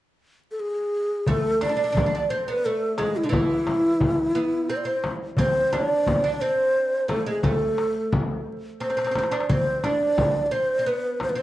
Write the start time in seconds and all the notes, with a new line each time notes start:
0.51 A4
0.60 G#4
1.26 A3 A4, darbuka dum, frame drum
1.61 D4 D5, darbuka tek, frame drum
1.69 D4
1.77 D4
1.84 D4
1.92 D4, darbuka dum
1.97 D4, frame drum
2.06 D4
2.15 D4
2.30 C4 C5
2.48 B3 B4
2.64 A3 A4, darbuka ka
2.98 G#3 G#4, darbuka tek, frame drum
3.17 E4
3.23 D3 D4
3.29 E3 E4, darbuka dum
3.33 frame drum
3.67 darbuka tek, frame drum
4.00 darbuka dum, frame drum
4.35 B3
4.69 C4 C5, darbuka ka
4.77 D5
4.84 C4 C5
5.04 darbuka tek, frame drum
5.37 C4 C5, darbuka dum, frame drum
5.73 D4 D5, darbuka tek, frame drum
6.06 darbuka dum, frame drum
6.24 D4
6.41 C4 C5
6.75 darbuka ka
7.08 A3 A4, darbuka tek, frame drum
7.27 G#3 G#4
7.43 A3, frame drum, darbuka dum
7.48 A4
7.78 darbuka tek
7.96 darbuka ka
8.12 frame drum, darbuka dum
8.47 darbuka ka
8.80 C4 C5, darbuka tek
8.90 C4, darbuka ka
8.97 C4, darbuka tek
9.04 C4, darbuka ka
9.11 C4, frame drum
9.15 C4, darbuka tek
9.23 darbuka ka
9.31 D4, darbuka tek
9.40 darbuka ka
9.49 C4 C5, darbuka dum, frame drum
9.84 D4 D5, darbuka tek, frame drum
10.18 darbuka dum, frame drum
10.46 D5
10.51 C4 C5
10.79 C4
10.86 B3 B4, darbuka ka
11.20 C5, darbuka tek, frame drum
11.29 B4
11.35 C4 C5